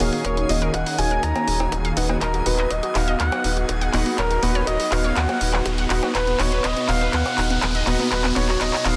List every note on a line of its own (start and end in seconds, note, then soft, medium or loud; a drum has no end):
0.00 0.10 D#1 medium
0.00 2.17 D#3 medium
0.00 2.17 A#3 medium
0.00 2.17 C#4 medium
0.00 8.96 F#4 medium
0.00 0.46 F#4 medium
0.00 2.17 G#4 medium
0.00 8.96 G#4 medium
0.00 0.46 G#4 medium
0.00 0.46 C#5 medium
0.00 0.46 D#5 medium
0.00 2.17 F5 medium
0.00 0.46 F5 loud
0.00 8.96 G#5 medium
0.00 open hi-hat loud
0.00 riser medium
0.00 high conga medium
0.13 0.19 A#3 medium
0.13 open hi-hat medium
0.13 high conga medium
0.25 0.45 D#1 medium
0.25 0.32 A#4 loud
0.25 0.48 C#5 medium
0.25 0.51 C#5 medium
0.25 kick loud
0.25 closed hi-hat medium
0.37 0.44 D#4 medium
0.37 closed hi-hat soft
0.49 0.69 D#1 medium
0.49 0.56 D#4 medium
0.49 0.60 F#4 medium
0.49 0.60 G#4 medium
0.49 0.60 C#5 medium
0.49 0.72 D#5 medium
0.49 0.60 D#5 medium
0.49 0.75 D#5 medium
0.49 0.60 F5 medium
0.49 open hi-hat loud
0.49 high conga medium
0.62 0.69 A#4 medium
0.62 closed hi-hat soft
0.74 0.84 D#1 medium
0.74 0.81 D#4 medium
0.74 0.97 F#5 medium
0.74 0.98 F#5 loud
0.74 kick loud
0.74 closed hi-hat medium
0.86 0.93 D#4 medium
0.86 open hi-hat medium
0.98 1.18 D#1 medium
0.98 1.05 D#4 medium
0.98 1.45 F#4 medium
0.98 1.45 G#4 medium
0.98 1.45 C#5 medium
0.98 1.45 D#5 medium
0.98 1.45 F5 medium
0.98 1.21 G#5 medium
0.98 1.25 G#5 loud
0.98 open hi-hat loud
1.11 1.18 A#4 medium
1.11 closed hi-hat soft
1.23 1.33 D#2 medium
1.23 1.30 D#4 medium
1.23 1.69 A#5 loud
1.23 1.72 A#5 loud
1.23 kick loud
1.23 closed hi-hat medium
1.36 1.42 D#4 medium
1.36 closed hi-hat soft
1.36 cowbell medium
1.36 high conga medium
1.48 1.68 D#1 medium
1.48 1.59 F#4 medium
1.48 1.59 G#4 medium
1.48 1.59 C#5 medium
1.48 1.59 D#5 medium
1.48 1.59 G#5 medium
1.48 kick medium
1.48 open hi-hat loud
1.60 1.67 D#4 medium
1.60 closed hi-hat soft
1.60 cowbell medium
1.72 1.92 D#1 medium
1.72 1.79 D#4 medium
1.72 kick loud
1.72 closed hi-hat medium
1.85 1.92 F5 medium
1.85 closed hi-hat soft
1.97 2.17 D#1 medium
1.97 2.04 D#4 medium
1.97 2.43 D#4 medium
1.97 2.43 F#4 medium
1.97 2.43 B4 medium
1.97 2.43 D#5 medium
1.97 2.43 F#5 loud
1.97 open hi-hat loud
2.09 2.16 D#4 medium
2.09 closed hi-hat soft
2.09 cowbell medium
2.09 high conga medium
2.21 2.41 D#1 medium
2.21 8.96 B3 medium
2.21 8.96 D#4 medium
2.21 2.47 A#4 medium
2.21 2.44 A#4 medium
2.21 2.28 D#5 loud
2.21 kick loud
2.21 clap soft
2.21 closed hi-hat medium
2.34 2.41 F#4 medium
2.34 closed hi-hat soft
2.46 2.66 D#1 medium
2.46 2.57 D#4 medium
2.46 2.57 F#4 medium
2.46 2.53 F#4 medium
2.46 2.72 B4 medium
2.46 2.57 B4 medium
2.46 2.69 B4 medium
2.46 2.57 D#5 medium
2.46 2.57 F#5 medium
2.46 open hi-hat loud
2.58 2.65 D#5 medium
2.58 clap soft
2.58 closed hi-hat soft
2.71 2.81 D#1 medium
2.71 2.78 F#4 medium
2.71 2.97 D#5 loud
2.71 2.94 D#5 loud
2.71 kick loud
2.71 closed hi-hat medium
2.83 2.90 F#4 medium
2.83 closed hi-hat soft
2.95 3.15 D#1 medium
2.95 3.42 D#4 medium
2.95 3.02 F#4 medium
2.95 3.42 F#4 medium
2.95 3.42 B4 medium
2.95 3.42 D#5 medium
2.95 3.19 F5 loud
2.95 3.18 F5 loud
2.95 3.42 F#5 medium
2.95 clap medium
2.95 open hi-hat loud
3.08 3.15 D#5 loud
3.08 closed hi-hat soft
3.20 3.30 D#2 medium
3.20 3.27 F#4 medium
3.20 3.66 F#5 loud
3.20 kick loud
3.20 clap medium
3.20 closed hi-hat medium
3.32 3.39 F#4 medium
3.32 closed hi-hat soft
3.32 cowbell medium
3.32 high woodblock medium
3.44 3.64 D#1 medium
3.44 3.55 D#4 medium
3.44 3.55 F#4 medium
3.44 3.55 B4 medium
3.44 3.55 D#5 medium
3.44 3.55 F#5 medium
3.44 kick medium
3.44 open hi-hat loud
3.57 3.64 F#4 medium
3.57 closed hi-hat soft
3.69 3.89 D#1 medium
3.69 3.76 F#4 medium
3.69 kick loud
3.69 closed hi-hat medium
3.81 3.88 F#5 loud
3.81 closed hi-hat soft
3.93 4.04 D#1 medium
3.93 4.40 D#4 medium
3.93 4.01 F#4 medium
3.93 4.40 F#4 medium
3.93 4.40 B4 medium
3.93 4.40 D#5 medium
3.93 4.40 F#5 loud
3.93 clap medium
3.93 open hi-hat loud
3.93 high conga medium
4.06 4.13 F#4 medium
4.06 open hi-hat medium
4.06 high conga medium
4.18 4.38 D#1 loud
4.18 4.41 A#4 medium
4.18 4.44 A#4 medium
4.18 4.25 C#5 loud
4.18 kick loud
4.18 clap medium
4.18 closed hi-hat medium
4.31 4.37 F#4 medium
4.31 closed hi-hat soft
4.43 4.63 D#1 medium
4.43 4.54 D#4 medium
4.43 4.50 F#4 medium
4.43 4.54 F#4 medium
4.43 4.54 B4 medium
4.43 4.67 B4 medium
4.43 4.66 B4 medium
4.43 4.54 D#5 medium
4.43 4.54 F#5 medium
4.43 open hi-hat loud
4.43 high conga medium
4.55 4.62 C#5 medium
4.55 closed hi-hat soft
4.67 4.77 D#1 medium
4.67 4.74 F#4 medium
4.67 4.93 D#5 loud
4.67 4.90 D#5 loud
4.67 kick loud
4.67 closed hi-hat medium
4.80 4.87 F#4 medium
4.80 open hi-hat medium
4.92 5.12 D#1 medium
4.92 5.38 D#4 medium
4.92 5.38 F#4 medium
4.92 4.99 F#4 medium
4.92 5.38 B4 medium
4.92 5.38 D#5 medium
4.92 5.18 F5 loud
4.92 5.15 F5 loud
4.92 5.38 F#5 medium
4.92 clap medium
4.92 open hi-hat loud
5.04 5.11 C#5 medium
5.04 closed hi-hat soft
5.16 5.27 D#2 medium
5.16 5.24 F#4 medium
5.16 5.66 F#5 loud
5.16 5.62 F#5 loud
5.16 kick loud
5.16 clap medium
5.16 closed hi-hat medium
5.29 5.36 F#4 medium
5.29 closed hi-hat soft
5.29 cowbell medium
5.29 high conga medium
5.41 5.61 D#1 medium
5.41 5.52 D#4 medium
5.41 5.52 F#4 medium
5.41 5.52 B4 medium
5.41 5.52 D#5 medium
5.41 5.52 F#5 medium
5.41 kick medium
5.41 open hi-hat loud
5.54 5.60 F#4 medium
5.54 clap medium
5.54 closed hi-hat soft
5.54 cowbell medium
5.54 high woodblock medium
5.66 5.86 D#1 medium
5.66 5.73 F#4 medium
5.66 kick loud
5.66 closed hi-hat loud
5.78 5.85 F#5 medium
5.78 closed hi-hat soft
5.90 6.00 D#1 medium
5.90 6.37 D#4 loud
5.90 5.97 F#4 medium
5.90 6.37 F#4 medium
5.90 6.37 B4 medium
5.90 6.37 D#5 medium
5.90 6.37 F#5 loud
5.90 clap medium
5.90 open hi-hat loud
6.03 6.10 F#4 medium
6.03 closed hi-hat soft
6.03 cowbell medium
6.03 high conga medium
6.15 6.35 D#1 loud
6.15 6.22 B4 loud
6.15 6.38 B4 medium
6.15 6.41 B4 medium
6.15 kick loud
6.15 clap medium
6.15 closed hi-hat medium
6.27 6.34 B3 medium
6.27 closed hi-hat soft
6.39 6.59 D#1 medium
6.39 6.46 B3 medium
6.39 6.51 D#4 medium
6.39 6.51 F#4 medium
6.39 6.51 B4 medium
6.39 6.62 C#5 medium
6.39 6.66 C#5 medium
6.39 6.51 D#5 medium
6.39 6.51 F#5 medium
6.39 clap medium
6.39 open hi-hat loud
6.52 6.59 B4 medium
6.52 closed hi-hat soft
6.64 6.74 D#1 medium
6.64 6.71 B3 medium
6.64 6.87 D#5 medium
6.64 6.88 D#5 loud
6.64 kick loud
6.64 clap medium
6.64 closed hi-hat loud
6.76 6.83 B3 medium
6.76 closed hi-hat soft
6.88 7.08 D#1 medium
6.88 6.96 B3 medium
6.88 7.35 D#4 medium
6.88 7.35 F#4 medium
6.88 7.35 B4 medium
6.88 7.35 D#5 medium
6.88 7.11 F5 loud
6.88 7.15 F5 loud
6.88 7.35 F#5 medium
6.88 clap medium
6.88 open hi-hat loud
7.01 7.08 B4 medium
7.01 closed hi-hat soft
7.13 7.23 D#2 medium
7.13 7.20 B3 medium
7.13 7.59 F#5 loud
7.13 7.63 F#5 loud
7.13 kick loud
7.13 clap medium
7.13 closed hi-hat loud
7.26 7.33 B3 medium
7.26 closed hi-hat soft
7.26 cowbell medium
7.26 high woodblock medium
7.38 7.58 D#1 medium
7.38 7.49 D#4 medium
7.38 7.49 F#4 medium
7.38 7.49 B4 medium
7.38 7.49 D#5 medium
7.38 7.49 F#5 loud
7.38 kick medium
7.38 clap medium
7.38 open hi-hat loud
7.50 7.57 B3 medium
7.50 closed hi-hat soft
7.62 7.82 D#1 medium
7.62 7.69 B3 medium
7.62 kick loud
7.62 clap medium
7.62 closed hi-hat loud
7.75 7.82 D#5 medium
7.75 closed hi-hat soft
7.87 7.97 D#1 loud
7.87 7.94 B3 medium
7.87 8.33 D#4 loud
7.87 8.33 F#4 medium
7.87 8.33 B4 medium
7.87 8.33 D#5 medium
7.87 8.33 F#5 loud
7.87 clap medium
7.87 open hi-hat loud
7.87 high conga loud
7.99 8.06 B3 medium
7.99 open hi-hat medium
7.99 high conga medium
8.12 8.31 D#1 loud
8.12 8.19 F#4 loud
8.12 8.34 B4 medium
8.12 kick loud
8.12 clap medium
8.12 closed hi-hat medium
8.24 8.31 B3 medium
8.24 clap medium
8.24 closed hi-hat soft
8.36 8.56 D#1 medium
8.36 8.43 B3 medium
8.36 8.47 D#4 medium
8.36 8.47 F#4 medium
8.36 8.47 B4 medium
8.36 8.62 C#5 medium
8.36 8.59 C#5 medium
8.36 8.47 D#5 medium
8.36 8.47 F#5 medium
8.36 clap medium
8.36 open hi-hat loud
8.36 high conga medium
8.49 8.55 F#4 medium
8.49 clap medium
8.49 closed hi-hat soft
8.61 8.71 D#1 medium
8.61 8.68 B3 medium
8.61 8.85 D#5 loud
8.61 8.84 D#5 loud
8.61 kick loud
8.61 clap loud
8.61 closed hi-hat loud
8.73 8.80 B3 medium
8.73 clap medium
8.73 open hi-hat medium
8.85 8.96 D#1 medium
8.85 8.92 B3 medium
8.85 8.96 D#4 medium
8.85 8.96 F#4 medium
8.85 8.96 B4 medium
8.85 8.96 D#5 medium
8.85 8.96 F5 loud
8.85 8.96 F#5 medium
8.85 clap loud
8.85 open hi-hat loud